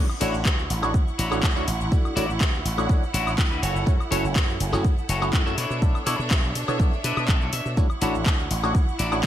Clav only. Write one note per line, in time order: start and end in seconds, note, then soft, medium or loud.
0.20 0.79 A3 medium
0.20 0.80 D4 medium
0.20 0.80 E4 medium
0.20 0.80 F#4 medium
0.20 0.80 C#5 medium
0.82 0.96 A3 loud
0.82 0.96 D4 medium
0.82 0.96 E4 medium
0.82 0.96 F#4 medium
0.82 0.97 C#5 loud
1.31 1.41 A3 medium
1.31 1.41 D4 medium
1.31 1.41 E4 medium
1.31 1.42 F#4 medium
1.31 1.42 C#5 medium
1.43 1.52 E4 medium
1.43 1.53 C#5 loud
1.56 1.64 A3 medium
1.56 1.64 D4 medium
1.56 1.65 E4 medium
1.56 1.65 F#4 medium
1.56 1.65 C#5 loud
1.92 2.14 A3 medium
1.92 2.14 D4 medium
1.92 2.14 E4 medium
1.92 2.14 F#4 medium
1.92 2.14 E5 medium
2.16 2.25 A3 loud
2.16 2.26 D4 medium
2.16 2.26 E4 medium
2.16 2.26 F#4 medium
2.16 2.26 C#5 loud
2.77 2.88 A3 medium
2.77 2.88 D4 medium
2.77 2.88 E4 medium
2.77 2.88 F#4 medium
2.77 2.88 C#5 medium
2.89 3.04 D4 medium
2.89 3.04 E4 medium
2.89 3.04 F#4 medium
2.89 3.04 C#5 loud
3.86 3.96 A3 loud
3.86 3.96 C#4 loud
3.86 3.96 E4 medium
3.86 3.96 F#4 medium
3.86 3.96 C#5 loud
4.11 4.70 A3 medium
4.11 4.70 C#4 medium
4.11 4.70 E4 medium
4.11 4.70 F#4 medium
4.11 4.70 C#5 medium
4.72 4.86 A3 medium
4.72 4.87 C#4 medium
4.72 4.87 E4 medium
4.72 4.87 F#4 medium
4.72 4.87 C#5 loud
5.22 5.32 A3 medium
5.22 5.32 C#4 medium
5.22 5.32 E4 medium
5.22 5.32 F#4 medium
5.22 5.32 C#5 medium
5.33 5.43 A3 medium
5.33 5.43 C#4 medium
5.33 5.43 E4 medium
5.33 5.43 F#4 medium
5.33 5.43 C#5 loud
5.46 5.54 A3 medium
5.46 5.55 C#4 medium
5.46 5.55 E4 medium
5.46 5.55 F#4 medium
5.46 5.55 C#5 loud
5.82 6.04 B3 medium
5.82 6.04 D4 medium
5.82 6.04 E4 medium
5.82 6.04 A4 medium
5.82 6.04 E5 medium
6.06 6.16 B3 medium
6.06 6.16 D4 medium
6.06 6.16 E4 medium
6.06 6.16 A4 medium
6.06 6.16 C#5 loud
6.68 6.78 B3 medium
6.68 6.78 D4 medium
6.68 6.78 E4 medium
6.68 6.78 A4 medium
6.68 6.78 C#5 medium
6.79 6.94 B3 loud
6.79 6.94 E4 medium
6.79 6.94 A4 medium
6.79 6.95 C#5 loud
7.77 7.87 A3 loud
7.77 7.87 D4 loud
7.77 7.87 E4 medium
7.77 7.87 F#4 medium
7.77 7.87 C#5 loud
8.01 8.60 A3 medium
8.01 8.60 D4 medium
8.01 8.61 E4 medium
8.01 8.61 F#4 medium
8.01 8.61 C#5 medium
8.63 8.77 A3 loud
8.63 8.77 D4 medium
8.63 8.77 E4 medium
8.63 8.77 F#4 medium
8.63 8.77 C#5 loud
9.12 9.22 A3 medium
9.12 9.22 D4 medium
9.12 9.22 E4 medium
9.12 9.22 F#4 medium
9.12 9.22 C#5 medium